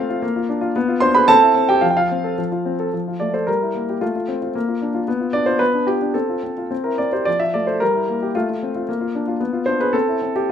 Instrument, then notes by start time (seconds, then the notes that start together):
grand piano
Already playing: A3 C4 F4 F5
0.09 F4
0.22 A#3
0.36 F4
0.49 D4
0.61 F4
0.76 B3
0.88 F4
1.00 D4 C5 C6
1.15 G#4 B4 B5
1.28 C4 A4 A5
1.42 E4
1.55 C4
1.69 G4 G5
1.81 F3 F5
1.90 G5
1.97 F4 F5
2.11 C4
2.24 A4
2.38 F3
2.52 F4
2.65 C4
2.80 A4
2.93 F3
3.08 F4
3.20 A3 D5
3.34 A4 C5
3.47 G3 A#4
3.62 E4
3.75 A#3
3.89 G4
4.01 A3 F4
4.16 F4
4.28 C4
4.42 F4
4.55 A#3
4.68 F4
4.82 D4
4.94 F4
5.08 B3
5.21 F4
5.33 D4 D5
5.46 F4 C5
5.59 B3 B4
5.74 D4
5.87 F4 G4
6.02 D4
6.14 C4 A4
6.29 F4
6.43 C4
6.58 F4
6.71 C4
6.84 E4 A#4
6.98 C4 D5
7.13 G4 C5
7.25 F3 D5
7.40 F4 E5
7.54 A3 D5
7.67 A4 C5
7.80 G3 A#4
7.95 E4
8.08 A#3
8.22 G4
8.35 A3 F4
8.49 F4
8.63 C4
8.75 F4
8.89 A#3
9.01 F4
9.15 D4
9.28 F4
9.40 B3
9.53 F4
9.66 D4 C5
9.80 G#4 B4
9.93 C4 A4
10.08 E4
10.22 C4
10.36 G4